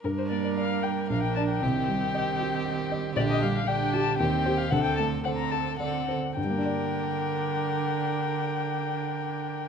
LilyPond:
<<
  \new Staff \with { instrumentName = "Violin" } { \time 3/4 \key g \minor \tempo 4 = 113 bes'16 c''16 d''16 d''16 f''8 g''8 f''16 g''16 a''16 g''16~ | g''2~ g''8 r8 | d''16 ees''16 f''16 f''16 g''8 a''8 g''8. f''16 | fis''16 g''16 a''8 fis''16 bes''16 a''8 fis''4 |
g''2.~ | g''2. | }
  \new Staff \with { instrumentName = "Violin" } { \time 3/4 \key g \minor bes'2 bes'4 | g'2. | g'4 g'4 g'4 | a'4 a'4 a'8 r8 |
bes'2.~ | bes'2. | }
  \new Staff \with { instrumentName = "Grand piano" } { \time 3/4 \key g \minor g,8 bes8 d''8 bes'8 bes,,8 <d' d''>8 | c,8 g8 ees''8 g'8 g''8 ees''8 | bes,,8 g8 d''8 g'8 ees,8 <g' c''>8 | d,8 a8 c''8 a'8 d''8 c''8 |
<g, g bes d' d''>2.~ | <g, g bes d' d''>2. | }
  \new Staff \with { instrumentName = "Viola" } { \time 3/4 \key g \minor d'2 d'4 | c'2. | d'4 d'4 c'4 | c'4 c'4 c'8 r8 |
d'2.~ | d'2. | }
  \new Staff \with { instrumentName = "Cello" } { \clef bass \time 3/4 \key g \minor g2 f4 | ees2. | d4 d4 ees4 | d4 d4 d8 r8 |
d2.~ | d2. | }
>>